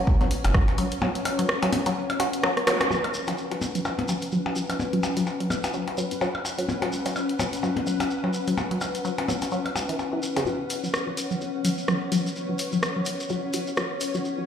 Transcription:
Already playing: C#4 B4 C#5 F#5
0.07 F#2, kick, percussion blips
0.21 F#3, closed hi-hat, percussion blips
0.31 open hi-hat
0.44 F#1, closed hi-hat, percussion blips
0.54 F#3, kick, cross-stick
0.68 closed hi-hat, percussion blips
0.78 F#3, open hi-hat
0.92 closed hi-hat
1.02 F#3, percussion blips
1.15 closed hi-hat
1.25 open hi-hat, percussion blips
1.39 F#3, closed hi-hat
1.49 cross-stick
1.62 F#3, closed hi-hat, percussion blips
1.73 open hi-hat, percussion blips
1.86 F#3, closed hi-hat, percussion blips
2.10 closed hi-hat, percussion blips
2.20 F#4, open hi-hat, percussion blips
2.33 closed hi-hat
2.43 F#3, cross-stick, percussion blips
2.57 cross-stick, closed hi-hat
2.67 F#3, cross-stick, open hi-hat, zap
2.81 cross-stick, closed hi-hat, percussion blips
2.91 F#1 F#3 C#4 B4, percussion blips, shekere
3.04 closed hi-hat, percussion blips
3.14 C#2, shekere
3.27 F#3, closed hi-hat, percussion blips, shekere
3.32 B4
3.38 shekere
3.51 F#3, closed hi-hat, percussion blips
3.61 F#1, percussion blips, shekere
3.75 F#3 F#5, closed hi-hat, shekere
3.85 F#2, percussion blips, shekere
3.99 closed hi-hat, percussion blips
4.08 F#3, percussion blips, shekere
4.22 F#1, closed hi-hat, shekere
4.32 F#3, shekere
4.46 percussion blips
4.56 F#3, shekere
4.70 closed hi-hat, percussion blips, shekere
4.80 F#1, percussion blips, shekere
4.93 F#3, closed hi-hat
5.03 C#2, percussion blips, shekere
5.17 F#3, closed hi-hat, shekere
5.27 percussion blips, shekere
5.40 F#3, closed hi-hat
5.50 F#1, percussion blips, shekere
5.64 closed hi-hat, percussion blips, shekere
5.74 F#1 F#3, shekere
5.88 closed hi-hat, percussion blips
5.98 F#3, shekere
6.11 F#2, closed hi-hat, shekere
6.21 F#3, percussion blips, shekere
6.35 percussion blips
6.45 percussion blips, shekere
6.58 F#3, closed hi-hat, shekere
6.69 F#1, percussion blips, shekere
6.82 F#3, closed hi-hat, percussion blips
6.92 C#2, shekere
7.06 F#3, closed hi-hat, percussion blips, shekere
7.16 percussion blips, shekere
7.29 closed hi-hat
7.39 F#1 F#3, percussion blips, shekere
7.53 closed hi-hat, shekere
7.63 F#2 F#3, percussion blips, shekere
7.77 closed hi-hat, percussion blips
7.87 F#3, shekere
8.00 F#1, closed hi-hat, percussion blips, shekere
8.11 shekere
8.24 F#3, percussion blips
8.33 shekere
8.47 F#3, closed hi-hat, shekere
8.57 F#1, percussion blips, shekere
8.71 F#3, closed hi-hat
8.81 C#2, percussion blips, shekere
8.95 closed hi-hat, shekere
9.05 F#3, shekere
9.18 closed hi-hat, percussion blips
9.28 F#1 F#3, percussion blips, shekere
9.42 closed hi-hat, percussion blips, shekere
9.51 F#3, shekere
9.66 closed hi-hat, percussion blips
9.76 C#2, percussion blips, shekere
9.89 E3, closed hi-hat, shekere
9.99 percussion blips, shekere
10.13 E3
10.22 shekere
10.36 F#2 C#3, closed hi-hat, percussion blips, shekere
10.46 F#1 F#3 C#5, shekere
10.70 C#2, open hi-hat, shekere
10.84 F#3, shekere
10.94 cross-stick, shekere
11.07 F#3
11.17 F#1, open hi-hat, shekere
11.31 F#3, shekere
11.41 F#2, shekere
11.65 F#3, open hi-hat, shekere
11.78 F#1, shekere
11.88 F#3, cross-stick, shekere
12.12 F#3, open hi-hat, shekere
12.26 shekere
12.36 F#1, shekere
12.49 F#3
12.59 C#2, open hi-hat, shekere
12.72 F#3, shekere
12.83 cross-stick, shekere
12.96 F#3
13.05 F#1, open hi-hat, shekere
13.20 shekere
13.29 F#1 F#3, shekere
13.53 F#3, open hi-hat, shekere
13.67 F#2, shekere
13.77 F#3, cross-stick, shekere
14.00 open hi-hat, shekere
14.14 F#3, shekere
14.25 F#1, shekere
14.38 F#3

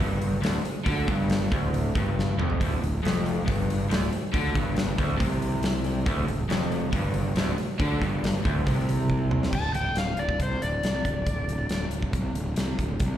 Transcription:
Already playing: G2
0.00 G1
0.21 open hi-hat
0.41 D1 D2, snare, open hi-hat
0.63 muted fingered electric bass stroke, muted overdriven electric guitar stroke, open hi-hat
0.85 D2 D3, kick, open hi-hat
1.07 G1 G2, kick, open hi-hat
1.30 snare, open hi-hat
1.51 D1 D2, kick, open hi-hat
1.74 open hi-hat
1.95 G1 G2, kick, open hi-hat
2.19 snare
2.38 F1 F2, mid tom
2.50 floor tom
2.60 D1 D2, kick, open hi-hat
2.81 D1 D2, open hi-hat
3.03 F1 F2, snare, open hi-hat
3.26 open hi-hat
3.46 G1 G2, kick, open hi-hat
3.70 open hi-hat
3.89 D1 D2, snare, open hi-hat
4.12 muted overdriven electric guitar stroke, muted fingered electric bass stroke, open hi-hat
4.33 D2 D3, kick, open hi-hat
4.55 G1 G2, kick, open hi-hat
4.76 snare, open hi-hat
4.98 D1 D2, kick, open hi-hat
5.19 C2 C3, kick, open hi-hat
5.42 open hi-hat
5.63 snare, open hi-hat
5.84 open hi-hat
6.06 D1 D2, kick, open hi-hat
6.28 D1 D2, open hi-hat
6.48 F1 F2, snare, open hi-hat
6.72 open hi-hat
6.92 G1 G2, kick, open hi-hat
7.14 open hi-hat
7.36 D1 D2, snare, open hi-hat
7.57 muted overdriven electric guitar stroke, muted fingered electric bass stroke, open hi-hat
7.79 D2 D3, kick, open hi-hat
8.01 G1 G2, kick, open hi-hat
8.24 snare, open hi-hat
8.45 D1 D2, kick, open hi-hat
8.66 C2 C3, kick, open hi-hat
8.89 open hi-hat
9.10 kick
9.31 mid tom
9.43 snare
9.53 D1 A5, kick, crash
9.73 D1 G5, closed hi-hat
9.95 D1 F5, snare, closed hi-hat
10.17 D1 D5, closed hi-hat
10.29 kick
10.39 C2 C5, kick, closed hi-hat
10.62 D1 D5, closed hi-hat
10.83 C2, snare, closed hi-hat
11.05 D1, kick, closed hi-hat
11.26 D1, kick, closed hi-hat
11.48 D1, closed hi-hat
11.69 D1, snare, closed hi-hat
11.90 D1, closed hi-hat
12.02 kick
12.13 C2, kick, closed hi-hat
12.33 D1, closed hi-hat
12.54 C2, snare, closed hi-hat
12.78 D1, kick, closed hi-hat
13.00 C2, kick, closed hi-hat

